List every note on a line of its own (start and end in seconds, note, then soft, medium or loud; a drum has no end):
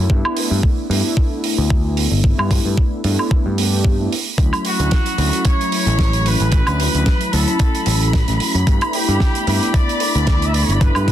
0.09 0.21 G2 medium
0.09 0.87 A3 medium
0.09 0.87 B3 medium
0.09 0.88 D4 medium
0.09 0.88 E4 medium
0.09 kick loud
0.25 high woodblock medium
0.37 open hi-hat loud
0.51 0.60 G2 medium
0.63 kick loud
0.89 1.01 G2 medium
0.89 2.21 A3 medium
0.89 2.21 B3 medium
0.89 2.21 D4 medium
0.89 2.22 E4 medium
0.89 open hi-hat loud
1.17 kick loud
1.44 open hi-hat loud
1.58 2.06 D2 loud
1.70 kick loud
1.97 open hi-hat medium
2.12 2.31 G1 medium
2.23 3.01 A3 medium
2.23 3.01 B3 medium
2.23 3.02 D4 medium
2.23 3.02 E4 medium
2.23 kick loud
2.39 2.58 G2 medium
2.39 high woodblock medium
2.51 kick medium
2.51 open hi-hat loud
2.65 2.75 G2 medium
2.78 kick loud
3.04 3.16 G2 medium
3.04 3.56 A3 medium
3.04 3.56 B3 medium
3.04 3.56 D4 medium
3.04 3.56 E4 medium
3.04 open hi-hat medium
3.19 high woodblock soft
3.31 kick loud
3.46 4.07 G2 medium
3.58 3.96 A3 medium
3.58 3.96 B3 medium
3.58 3.96 D4 medium
3.58 3.96 G4 medium
3.58 open hi-hat loud
3.85 kick loud
3.99 4.13 A3 medium
3.99 4.13 B3 medium
3.99 4.13 D4 medium
3.99 4.13 E4 loud
4.13 open hi-hat medium
4.37 4.49 D2 medium
4.37 5.15 F#3 medium
4.37 5.15 A3 medium
4.37 5.16 C#4 medium
4.37 5.16 E4 medium
4.37 11.12 B5 medium
4.37 kick loud
4.37 closed hi-hat loud
4.53 closed hi-hat soft
4.53 high woodblock medium
4.65 5.42 F#4 loud
4.65 open hi-hat loud
4.80 4.89 D2 medium
4.80 closed hi-hat medium
4.91 kick loud
4.91 snare loud
4.91 closed hi-hat medium
5.06 closed hi-hat medium
5.17 5.30 D2 medium
5.17 6.49 F#3 medium
5.17 6.49 A3 medium
5.17 6.50 C#4 medium
5.17 6.50 E4 medium
5.17 open hi-hat loud
5.33 closed hi-hat medium
5.45 6.26 C#5 loud
5.45 kick loud
5.45 closed hi-hat loud
5.61 closed hi-hat medium
5.72 open hi-hat loud
5.87 6.35 A1 medium
5.87 closed hi-hat medium
5.99 kick loud
5.99 snare loud
5.99 closed hi-hat medium
6.13 closed hi-hat medium
6.26 7.33 B4 loud
6.26 open hi-hat loud
6.40 6.60 A1 medium
6.40 closed hi-hat medium
6.51 7.29 F#3 medium
6.51 7.30 A3 medium
6.51 7.30 C#4 medium
6.51 7.31 E4 medium
6.51 kick loud
6.51 closed hi-hat medium
6.67 6.87 D2 medium
6.67 closed hi-hat medium
6.67 high woodblock medium
6.80 open hi-hat loud
6.95 7.04 D2 medium
6.95 closed hi-hat medium
7.06 kick loud
7.06 snare loud
7.06 closed hi-hat medium
7.21 closed hi-hat medium
7.32 7.44 D2 loud
7.32 8.63 F#3 medium
7.32 8.64 A3 medium
7.32 8.64 C#4 medium
7.32 8.64 E4 medium
7.32 8.13 A4 medium
7.32 open hi-hat loud
7.47 closed hi-hat medium
7.59 kick loud
7.59 closed hi-hat medium
7.75 closed hi-hat soft
7.86 8.22 A1 loud
7.86 open hi-hat loud
8.02 closed hi-hat medium
8.13 kick loud
8.13 snare loud
8.13 closed hi-hat medium
8.28 8.37 A1 medium
8.28 snare soft
8.28 closed hi-hat medium
8.40 muted picked electric bass stroke soft
8.40 open hi-hat medium
8.55 8.64 F#2 medium
8.55 closed hi-hat medium
8.66 8.78 G2 medium
8.66 9.44 A3 medium
8.66 9.44 B3 medium
8.66 kick loud
8.66 closed hi-hat medium
8.81 closed hi-hat medium
8.81 high woodblock medium
8.93 9.71 G4 loud
8.93 open hi-hat loud
9.08 9.18 G2 medium
9.08 closed hi-hat medium
9.20 kick loud
9.20 snare loud
9.20 closed hi-hat medium
9.35 closed hi-hat medium
9.46 9.59 G2 loud
9.46 10.78 A3 medium
9.46 10.78 B3 medium
9.46 10.78 D4 medium
9.46 10.79 E4 medium
9.46 open hi-hat loud
9.63 closed hi-hat medium
9.74 10.46 D5 loud
9.74 kick loud
9.74 closed hi-hat medium
9.89 closed hi-hat medium
10.00 open hi-hat loud
10.15 10.63 D2 loud
10.15 closed hi-hat medium
10.27 kick loud
10.27 snare loud
10.27 closed hi-hat medium
10.42 10.54 E5 medium
10.42 closed hi-hat medium
10.53 10.64 D5 medium
10.53 open hi-hat loud
10.63 10.73 C#5 medium
10.69 10.89 G1 medium
10.69 10.81 D5 medium
10.69 closed hi-hat medium
10.80 11.12 A3 medium
10.80 11.12 B3 medium
10.80 11.12 D4 medium
10.80 11.12 E4 medium
10.80 11.12 B4 medium
10.80 kick loud
10.80 closed hi-hat medium
10.95 11.12 G2 medium
10.95 closed hi-hat soft
10.95 high woodblock medium
11.08 kick medium
11.08 open hi-hat loud